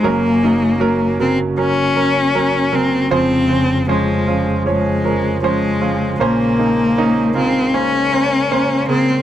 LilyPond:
<<
  \new Staff \with { instrumentName = "Grand piano" } { \time 4/4 \key bes \minor \tempo 4 = 78 <ges des' bes'>8 <ges des' ees'>8 <ges des' bes'>8 <des ges bes'>8 <ges des' bes'>8 <ges des' bes'>8 <ges des' bes'>8 <des ges bes'>8 | <des f c''>8 <des f c''>8 <f des' c''>8 <f des' f'>8 <f des' des''>8 <f des' bes'>8 <f des' c''>8 <f des' f'>8 | <bes des' c''>8 <bes des' ees'>8 <bes des' ees'>8 <des bes f'>8 <bes des' c''>8 <bes des' c''>8 <bes des' c''>8 <des bes aes'>8 | }
  \new Staff \with { instrumentName = "Grand piano" } { \clef bass \time 4/4 \key bes \minor <ges,, ges,>1 | <f,, f,>1 | <bes,, bes,>1 | }
  \new Staff \with { instrumentName = "Cello" } { \time 4/4 \key bes \minor bes4. c'8 des'4. c'8 | c'4 aes4 aes4 aes4 | bes4. c'8 des'4. c'8 | }
  \new Staff \with { instrumentName = "Tonewheel organ" } { \time 4/4 \key bes \minor ges'1 | <f, f'>1 | bes'1 | }
  \new Staff \with { instrumentName = "Tonewheel organ" } { \clef bass \time 4/4 \key bes \minor << { bes1 | aes1~ | aes1 | } \\ { des1~ | des1~ | des1 | } >> }
>>